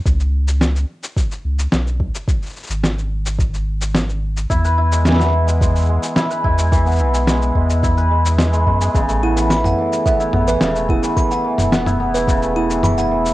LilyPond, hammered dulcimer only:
\new Staff \with { instrumentName = "Hammered dulcimer" } { \clef bass \time 4/4 \key cis \minor \tempo 4 = 108 r1 | r1 | e'16 b'16 e'16 gis16 e16 b16 e'16 gis16 gis8 gis8 e'16 b'16 e'16 gis16 | e16 b16 e'16 gis16 gis8 gis8 e'16 b'16 gis16 e'16 gis16 gis16 gis16 gis'16 |
cis16 a16 b16 e16 e8 e8 b16 e'16 b16 e16 cis16 a16 b16 e16 | e8 e8 b16 e'16 b16 e16 cis16 a16 b16 e16 e8 e8 | }